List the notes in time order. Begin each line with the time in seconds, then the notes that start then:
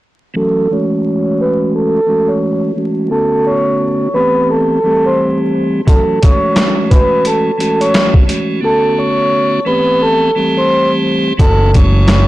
0.34 E3 F#3 A3 C#4 F#4 A4 A5
0.70 E3 G#3 A3 C#4 F#4 C#5 C#6
1.41 B4 B5
1.75 A4 A5
2.06 E3 G#3 A3 C#4 F#4
2.28 C#5 C#6
2.75 E3 G#3 A3 C#4 F#4
3.09 D3 A3 B3 C#4 F#4 A4 A5
3.47 C#5 C#6
4.13 E3 A3 B3 C4 G4 B4 B5
4.50 A4 A5
4.83 E3 G3 A3 C4 G4
5.06 C5 C6
5.85 E3 F#3 A3 C#4 F#4 A4 A5, kick, closed hi-hat
6.22 E3 G#3 A3 C#4 F#4 C#5 C#6, kick, closed hi-hat
6.56 snare, closed hi-hat
6.90 B4 B5, kick, closed hi-hat
7.25 A4 A5, closed hi-hat
7.58 E3 G#3 A3 C#4 F#4, closed hi-hat
7.81 C#5 C#6, closed hi-hat
7.94 snare, closed hi-hat
8.14 kick
8.27 E3 G#3 A3 C#4 F#4, closed hi-hat
8.61 D3 A3 B3 C#4 F#4 A4
8.65 A5
8.98 C#5 C#6
9.65 E3 A3 B3 C4 G4 B4 B5
10.01 A4 A5
10.35 E3 G3 A3 C4 G4
10.57 C5 C6
11.37 F#1 E3 F#3 A3 C#4 F#4 A4 A5, kick, closed hi-hat
11.74 E3 G#3 A3 C#4 F#4 C#5 C#6, kick, closed hi-hat
12.08 snare, closed hi-hat